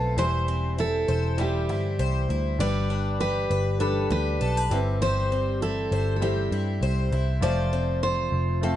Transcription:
Already playing: B1 F3 A3 C4 F4 A4 B4
0.17 E1 E3 G3 E4 C5
0.48 C4
0.78 E4 A4
1.08 E1 C5
1.37 G3 E4 G4 C5
1.69 G1 E4
1.99 C2 C5
2.29 D2 E4
2.59 G1 G3 D4 B4 D5
2.90 D4
3.20 G4 B4
3.50 G1 B4
3.79 G3 D4 A4 B4
4.10 D2 G4 B4
4.41 B1 A4
4.57 B4
4.70 G1 G3 C4 E4
5.01 G1 G3 C5
5.32 C4
5.62 E4 A4
5.92 G1 C5
6.16 A4
6.20 G3 C4 E4 G4 C5
6.51 G2 E4
6.82 C2 C5
7.12 C2 E4
7.40 F1 F3 A3 F4 C5 D5
7.73 C4
8.03 F4 C5
8.32 F1
8.61 A3 C4 F4 A4

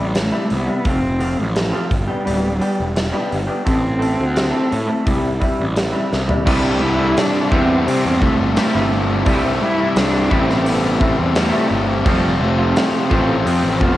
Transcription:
Already playing: G3
0.00 A1
0.14 muted clean electric guitar stroke, snare, open hi-hat
0.21 A3
0.32 G2 C3 G3 E4
0.50 C2, open hi-hat
0.56 B3
0.67 G2 C3 G3 E4
0.84 F1 F3 A3 C4 F4, kick, open hi-hat
0.89 C4
1.03 muted clean electric guitar stroke
1.19 F3 A3 C4 F4, open hi-hat
1.40 A1 F3
1.56 snare, open hi-hat
1.72 F3 A3 C4 F4
1.85 F3
1.91 G1 G3, kick, open hi-hat
2.08 G3 B3 D4 G4
2.25 D1 G3 B3 D4 G4, open hi-hat
2.60 G3 B3 D4 G4, open hi-hat
2.80 E1
2.96 muted clean electric guitar stroke, snare, open hi-hat
3.12 G3 B3 D4 G4
3.32 G1, open hi-hat
3.47 G3 B3 D4 G4
3.64 A1 A3 C4 E4 A4, kick, open hi-hat
3.82 muted clean electric guitar stroke
3.98 A3 C4 E4 A4, open hi-hat
4.20 D2
4.36 snare, open hi-hat
4.51 A3 C4 E4 A4
4.72 A2 A3, open hi-hat
4.87 A3 C4 E4 A4
5.05 C2 G2 C3 G3 E4, kick, open hi-hat
5.10 G3
5.39 G2 C3 G3 E4, kick, open hi-hat
5.60 A1
5.75 muted clean electric guitar stroke, snare, open hi-hat
5.92 G2 C3 G3 E4
6.13 C2, snare
6.28 G2 C3 G3 E4, floor tom
6.45 C2 G2 C3 G3 A3 E4, kick, crash
6.80 C2 E4
6.98 C3 G3 A3 E4
7.17 D4, snare, open hi-hat
7.50 E2 C3 G3 A3 C4 E4, kick
7.55 C2 G2
7.86 C3 C4, muted clean electric guitar stroke, open hi-hat
8.05 E2
8.21 C2 C3 G3 A3 E4, kick
8.39 G1, muted clean electric guitar stroke
8.56 C2 G2 C3 G3 A3, snare, open hi-hat
8.60 E4
8.74 G1 C3 G3 A3 E4
8.92 muted clean electric guitar stroke
9.25 C2 G2 C3 G3 A3 E4, kick, open hi-hat
9.63 E4
9.78 C3 G3 A3 E4
9.96 C2 D4, snare, open hi-hat
10.30 A1 C2 G2 C3 G3 A3 C4 E4, kick
10.50 snare
10.65 B3, muted clean electric guitar stroke, open hi-hat
11.00 C3 G3 A3 C4 E4, kick
11.18 E2, muted clean electric guitar stroke
11.35 C2 G2 C3 G3 A3 E4, snare, open hi-hat
11.53 C3 G3 A3 E4
11.70 G1, muted clean electric guitar stroke
12.05 F1 F2 C3 F3 G3 A3 C4 F4, kick, crash
12.41 F1 A3
12.58 F3 A3 C4 F4
12.76 snare, open hi-hat
13.10 A1 F2 C3 F3 A3 C4 F4, kick
13.46 F2 C4, muted clean electric guitar stroke, open hi-hat
13.63 A1
13.80 F1 F3 A3 B3 C4 F4, kick

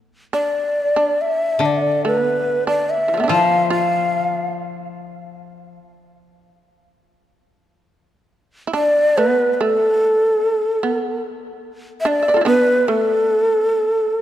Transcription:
0.33 D4 D5
0.96 D4
1.21 E5
1.59 D3 D4
1.65 D5
2.05 A3 B4
2.23 B3
2.67 D4 D5
2.90 E5
3.08 E3
3.14 F3 A3
3.20 B3 D4
3.28 F3 E4 F4
3.32 F5
3.70 F4 F5
8.67 E4
8.73 D4 D5
9.18 B3 B4
9.54 B4
9.61 A3 A4
10.41 F3
10.83 B3
12.01 E5
12.05 D4 D5
12.22 E5
12.28 B4 D5
12.34 F4 A4
12.41 D4 E4
12.46 B3 B4
12.88 A3 A4

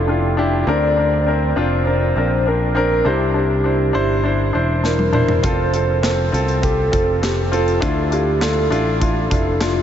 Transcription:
Already playing: F1 D3 D4 E4 F4 G4 A4
0.08 D4 E4 F4
0.37 D4 E4 G4
0.67 D2 D3 C4 D4 A#4 D5
0.97 C4 D4 A#4
1.26 C4 D4 A#4 C5
1.56 F1 C4 D4 F4
1.86 C4 D4 A#4 C5
2.16 A#1 C4 D4 A#4
2.46 C4 D4 A#4
2.75 C4 D4 A#4
3.05 C2 C3 D4 E4 G4 C5
3.34 D4 E4 G4 C5
3.64 D4 E4 C5
3.93 G1 D4 E4 C5
4.24 D4 E4 C5
4.53 E1 D4 E4 C5
4.83 D4 E4 A#4 C5, snare
4.99 high tom
5.13 D4 E4 C5, mid tom
5.28 floor tom
5.43 F1 C4 F4 A4 C5, kick, closed hi-hat
5.72 C4 F4 A4, closed hi-hat
6.03 C4 F4 A4 C5, snare, clap, closed hi-hat
6.32 C2 C4 F4 A4, closed hi-hat
6.48 closed hi-hat
6.62 C4 F4 G4 A4, kick, closed hi-hat
6.91 F1 C4 F4 A4, kick, closed hi-hat
7.22 C4 F4 G4 A4, snare, clap, closed hi-hat
7.46 G4
7.52 C4 F4 A4, closed hi-hat
7.68 closed hi-hat
7.80 D2 D3 D4 E4 F4, kick, closed hi-hat
8.11 D4 E4 F4 G4, closed hi-hat
8.40 D4 E4 F4 A4, snare, clap, closed hi-hat
8.70 A1 D4 E4 F4, closed hi-hat
9.00 D4 E4 F4 A4, kick, closed hi-hat
9.30 F1 D4 E4 F4, kick, closed hi-hat
9.60 D4 E4 F4, snare, clap, closed hi-hat

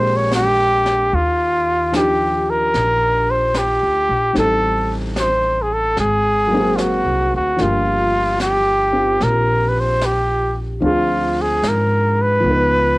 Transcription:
Already playing: A#1 G#3 A#3 C4 D4 G4 C5
0.16 C#5
0.32 G4, snare, hi-hat pedal
0.86 snare
1.12 D#2 F4, brush sweep
1.92 F3 D4 D#4 G4, snare, hi-hat pedal
1.96 G4
2.50 A#4
2.74 A#1, brush sweep, snare
3.31 C5
3.54 G4, snare, hi-hat pedal
3.83 D2
4.09 A#1
4.33 A1 G3 C4 D#4, brush sweep, snare
4.38 A4
5.16 C5, snare, hi-hat pedal
5.62 G#4
5.73 A4
5.97 G#1 G#4, brush sweep, snare
6.47 F#3 A#3
6.54 C4
6.59 G#4
6.76 F4 F#4, snare, hi-hat pedal
7.05 C2
7.34 D2 F#4
7.56 F3 A#3 D4, brush sweep, snare
7.61 G1 F4 G4
8.40 G4, snare, hi-hat pedal
8.93 C4 F4 G4
9.21 A#1 A#4, brush sweep, snare
9.69 B4
9.80 C5
10.01 snare, hi-hat pedal
10.06 G4
10.80 D2 F3 C4 D4 F4, brush sweep
10.86 G#4
11.41 G#4
11.63 G#2, snare, hi-hat pedal
11.68 A#4
12.22 B4
12.40 C#2 F3 B3
12.44 D#4, brush sweep
12.50 B4

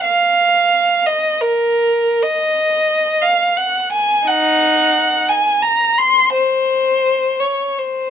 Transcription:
0.03 F5
1.06 D#5
1.41 A#4
2.23 D#5
3.22 F5
3.57 F#5
3.92 G#5
4.26 D#4 F#5
5.29 G#5
5.62 A#5
5.98 C6
6.33 C5
7.40 C#5
7.79 C5

